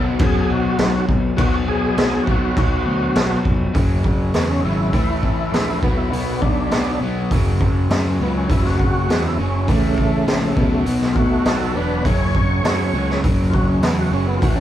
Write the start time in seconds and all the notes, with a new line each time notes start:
Already playing: B1 B2 F#3 B3
0.19 F#2, kick, crash
0.24 G#4
0.49 B1 F#4
0.79 B1, snare, crash
1.08 B1, kick
1.37 B1 B2 F#3 F#4, kick, crash
1.41 B3
1.68 B1 G#4
1.97 B1, snare, crash
2.24 B1 B3 F#4, kick
2.28 B2 F#3
2.57 B1, kick, crash
2.86 D2
3.15 B1, snare, crash
3.45 F1, kick
3.74 F#1 F#2 C#3 F#3, kick, open hi-hat
4.04 F#1, kick
4.34 E2 F#2 C#3 F#3 B3, snare, open hi-hat
4.49 C#4
4.59 D#4
4.63 G#1 F#2 C#3 F#3 E4
4.93 A1 A2 E3 A3, kick, open hi-hat
5.23 A1, kick
5.52 A#1 A2 E3 A3, snare, open hi-hat
5.82 B1 B2 F#3 B3, kick
5.97 E4
6.12 B1 B2 F#3 B3, open hi-hat
6.42 B1 D4, kick
6.71 B1 B2 F#3 B3, snare, open hi-hat
7.01 B1 B2 F#3 B3
7.31 F#1 F#2 C#3 F#3, kick, open hi-hat
7.61 F#2, kick
7.90 F#2 C#3 F#3, snare, open hi-hat
8.20 C#2 F#2 C#3 F#3 B3
8.37 C#4
8.49 F#1 F#2 C#3 F#3 E4, kick, open hi-hat
8.63 F4, snare
8.67 F#4
8.79 F#1, kick
9.08 E2 F#2 C#3 F#3, snare, open hi-hat
9.25 E4
9.39 F#1 F#2 C#3 F#3 C#4
9.67 A1 A2 C#3 E3 A3, kick, open hi-hat
9.98 A1, kick
10.26 A#1 A2 E3 A3, snare, open hi-hat
10.56 B1 B2 F#3 B3, kick
10.86 B1 B2 F#3 B3, open hi-hat
11.02 snare
11.13 B1 F4 F#4, kick
11.17 A3
11.45 B1 B2 F#3 B3 F#4 A4, snare, open hi-hat
11.75 E1 B2 F#3 B3 D4 B4
12.05 F#1 F#2 C#3 F#3 C#5, kick, open hi-hat
12.34 F#2, kick
12.63 F#2 C#3 F#3, snare, open hi-hat
12.93 C#2 F#2 C#3 F#3
13.10 snare
13.23 F#1 F#2 C#3 F#3, kick, open hi-hat
13.50 F#1 F4, kick
13.54 F#4
13.69 C#4
13.81 E2 F#2 C#3 F#3 B3, snare, open hi-hat
13.99 F#4
14.12 F#1 F#2 C#3 F#3 C#4
14.27 B3
14.37 A2 F4
14.42 A1 E3 A3 F#4, kick, open hi-hat
14.55 C#4